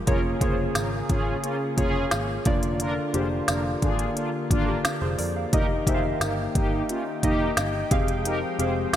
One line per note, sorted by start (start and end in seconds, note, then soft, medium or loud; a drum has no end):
0.07 0.33 F1 loud
0.07 2.44 C#3 medium
0.07 0.36 A#3 medium
0.07 7.88 A#3 medium
0.07 0.21 C#4 loud
0.07 0.36 F4 medium
0.07 0.21 F4 loud
0.07 0.37 G#4 medium
0.07 2.44 G#4 medium
0.07 0.21 A#4 loud
0.07 0.37 C#5 loud
0.07 kick loud
0.07 closed hi-hat medium
0.41 0.67 F1 loud
0.41 1.58 A#3 medium
0.41 0.55 F4 medium
0.41 1.58 F4 medium
0.41 0.55 G#4 medium
0.41 1.58 G#4 medium
0.41 0.55 C5 medium
0.41 1.59 C#5 medium
0.41 kick medium
0.41 closed hi-hat medium
0.75 1.01 G#1 medium
0.75 0.89 C#4 medium
0.75 0.89 F4 medium
0.75 0.89 A#4 medium
0.75 snare loud
0.75 closed hi-hat loud
0.75 tambourine medium
1.09 1.35 G#1 medium
1.09 1.37 C#4 medium
1.09 1.37 F4 loud
1.09 1.37 G#4 loud
1.09 kick medium
1.09 closed hi-hat medium
1.44 1.57 A#3 loud
1.44 1.57 C#4 medium
1.44 1.57 F4 loud
1.44 closed hi-hat medium
1.77 2.03 F1 medium
1.77 2.45 A#3 medium
1.77 2.05 C#4 medium
1.77 2.05 F4 medium
1.77 2.45 F4 medium
1.77 2.05 G#4 loud
1.77 2.46 G#4 medium
1.77 2.46 C#5 medium
1.77 kick medium
1.77 closed hi-hat medium
2.11 2.38 G#1 medium
2.11 snare loud
2.11 closed hi-hat medium
2.11 tambourine medium
2.45 2.97 F1 medium
2.45 5.50 D3 medium
2.45 3.04 A#3 medium
2.45 3.04 D4 medium
2.45 5.50 F4 medium
2.45 3.05 F4 medium
2.45 3.05 D5 medium
2.45 kick loud
2.45 closed hi-hat medium
2.63 closed hi-hat soft
2.80 2.94 D4 loud
2.80 2.94 F4 loud
2.80 2.94 A#4 loud
2.80 closed hi-hat medium
3.14 3.40 F1 medium
3.14 4.31 A#3 medium
3.14 4.31 D4 medium
3.14 3.28 F4 medium
3.14 4.31 F4 medium
3.14 4.31 G4 medium
3.14 3.28 G#4 medium
3.14 3.28 C5 medium
3.14 closed hi-hat medium
3.48 3.74 F1 medium
3.48 3.62 D4 medium
3.48 3.62 F4 medium
3.48 3.62 A#4 medium
3.48 snare loud
3.48 closed hi-hat loud
3.48 tambourine medium
3.82 4.08 G#1 medium
3.82 4.10 D4 loud
3.82 4.10 F4 medium
3.82 4.10 G#4 loud
3.82 kick medium
3.82 closed hi-hat medium
3.99 closed hi-hat medium
4.16 4.30 A#3 medium
4.16 4.30 D4 medium
4.16 4.30 F4 loud
4.16 closed hi-hat medium
4.50 4.76 G#1 medium
4.50 4.78 A#3 medium
4.50 4.78 D4 medium
4.50 4.78 F4 loud
4.50 kick medium
4.50 closed hi-hat medium
4.68 5.00 G4 medium
4.68 5.00 A#4 medium
4.85 muted picked electric bass stroke soft
4.85 snare loud
4.85 closed hi-hat medium
4.85 tambourine medium
5.02 5.15 F1 medium
5.02 5.18 G#4 medium
5.02 5.18 C5 medium
5.19 5.44 F2 loud
5.19 5.35 A#4 medium
5.19 5.35 D5 medium
5.19 open hi-hat medium
5.36 5.69 D5 soft
5.36 5.68 F5 medium
5.53 5.78 F1 medium
5.53 7.89 D#3 medium
5.53 5.82 A#3 medium
5.53 5.82 D#4 medium
5.53 5.67 D#4 loud
5.53 5.67 G4 loud
5.53 5.82 G4 medium
5.53 5.67 A#4 loud
5.53 5.82 D#5 medium
5.53 8.96 G5 medium
5.53 kick loud
5.53 closed hi-hat medium
5.87 6.12 F1 loud
5.87 7.04 A#3 medium
5.87 7.04 D#4 medium
5.87 6.01 F4 medium
5.87 7.04 G4 medium
5.87 6.01 G#4 medium
5.87 6.00 C5 loud
5.87 5.94 E5 medium
5.87 kick medium
5.87 closed hi-hat medium
5.95 7.08 F5 medium
6.21 6.46 G1 loud
6.21 6.35 D#4 medium
6.21 6.35 G4 medium
6.21 6.35 A#4 medium
6.21 snare loud
6.21 closed hi-hat loud
6.21 tambourine medium
6.55 6.81 G1 medium
6.55 6.83 A#3 loud
6.55 6.83 D#4 loud
6.55 6.83 G4 loud
6.55 kick medium
6.55 closed hi-hat medium
6.89 7.03 A#3 medium
6.89 7.03 C#4 medium
6.89 7.03 F4 loud
6.89 closed hi-hat medium
7.23 7.49 F1 medium
7.23 7.91 A#3 medium
7.23 7.51 A#3 medium
7.23 7.51 D#4 medium
7.23 7.92 D#4 medium
7.23 7.51 G4 loud
7.23 7.90 G4 medium
7.23 7.92 D#5 medium
7.23 kick medium
7.23 closed hi-hat medium
7.57 7.83 G1 loud
7.57 snare loud
7.57 closed hi-hat medium
7.57 tambourine medium
7.91 8.42 F1 loud
7.91 8.96 F3 medium
7.91 8.96 G#3 medium
7.91 8.50 C4 medium
7.91 8.50 G4 medium
7.91 8.50 G#4 medium
7.91 8.50 F5 loud
7.91 kick loud
7.91 closed hi-hat medium
8.08 closed hi-hat soft
8.25 8.39 D#4 loud
8.25 8.39 G4 loud
8.25 8.39 A#4 loud
8.25 closed hi-hat medium
8.59 8.85 F1 medium
8.59 8.96 C4 medium
8.59 8.73 C4 medium
8.59 8.96 G4 medium
8.59 8.96 G#4 medium
8.59 8.73 G#4 medium
8.59 8.73 C5 medium
8.59 8.96 F5 medium
8.59 closed hi-hat medium
8.93 8.96 F1 medium